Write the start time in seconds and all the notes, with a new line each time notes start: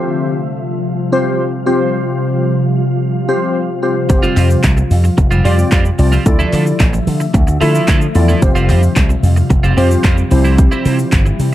Already playing: C3 F3 G3 C4 F4 G4 C5
1.12 C4 F4 G4 C5
1.66 C4 F4 G4 C5
3.28 C4 F4 G4 C5
3.82 C4 F4 G4 C5
4.09 F1 C4 F4 G4 C5, muted clean electric guitar stroke, kick, closed hi-hat, shaker
4.23 G3 C4 F4, shaker
4.36 F2 G3 C4 F4, clap, open hi-hat, shaker
4.50 muted clean electric guitar stroke, shaker
4.63 C2, muted clean electric guitar stroke, kick, clap, closed hi-hat, shaker
4.77 muted clean electric guitar stroke, shaker
4.91 F2, open hi-hat, shaker
5.04 muted clean electric guitar stroke, shaker
5.17 F1, muted clean electric guitar stroke, kick, closed hi-hat, shaker
5.31 F1 G3 C4 F4, shaker
5.44 F2 G3 C4 F4 G4 D5, open hi-hat, shaker
5.58 muted clean electric guitar stroke, shaker
5.71 F2 G3 C4 F4, kick, clap, closed hi-hat, shaker
5.85 muted clean electric guitar stroke, shaker
5.99 C2 C4 F4 G4 D5, muted clean electric guitar stroke, open hi-hat, shaker
6.12 G3 C4 F4, shaker
6.26 D2 D3 A3 E4 F4 A4 D5 E5, kick, closed hi-hat, shaker
6.39 F3 A3 E4, shaker
6.52 D3 F3 A3 E4, clap, open hi-hat, shaker
6.66 muted clean electric guitar stroke, shaker
6.80 A1, muted clean electric guitar stroke, kick, clap, closed hi-hat, shaker
6.93 muted clean electric guitar stroke, shaker
7.07 D3, open hi-hat, shaker
7.20 muted clean electric guitar stroke, shaker
7.34 D2, muted clean electric guitar stroke, kick, closed hi-hat, shaker
7.47 D2, muted clean electric guitar stroke, shaker
7.61 D3 F3 A3 E4 F4 A4 E5, open hi-hat, shaker
7.74 F3 A3 E4, shaker
7.88 D3 F3 A3 E4, kick, clap, closed hi-hat, shaker
8.01 muted clean electric guitar stroke, shaker
8.15 E2 E4 F4 A4 D5, muted clean electric guitar stroke, open hi-hat, shaker
8.28 F3 A3 E4, shaker
8.42 F1 C3 G3 C4 F4 G4 C5, muted clean electric guitar stroke, kick, closed hi-hat, shaker
8.55 G3 C4 F4, shaker
8.69 F2 G3 C4 F4, clap, open hi-hat, shaker
8.82 muted clean electric guitar stroke, shaker
8.96 C2, muted clean electric guitar stroke, kick, clap, closed hi-hat, shaker
9.09 muted clean electric guitar stroke, shaker
9.23 F2, open hi-hat, shaker
9.36 muted clean electric guitar stroke, shaker
9.50 F1, muted clean electric guitar stroke, kick, closed hi-hat, shaker
9.63 F1 G3 C4 F4, shaker
9.77 F2 G3 C4 F4 G4 C5, open hi-hat, shaker
9.90 muted clean electric guitar stroke, shaker
10.04 F2 G3 C4 F4, kick, clap, closed hi-hat, shaker
10.18 muted clean electric guitar stroke, shaker
10.31 C2 C3 E3 G3 C4 E4 G4 C5, muted clean electric guitar stroke, open hi-hat, shaker
10.44 G3 C4 E4, shaker
10.58 kick, closed hi-hat, shaker
10.71 G3 C4 E4, shaker
10.85 C3 G3 C4 E4, open hi-hat, shaker
10.99 muted clean electric guitar stroke, shaker
11.12 G1, muted clean electric guitar stroke, kick, clap, closed hi-hat, shaker
11.26 muted clean electric guitar stroke, shaker
11.40 C3, open hi-hat, shaker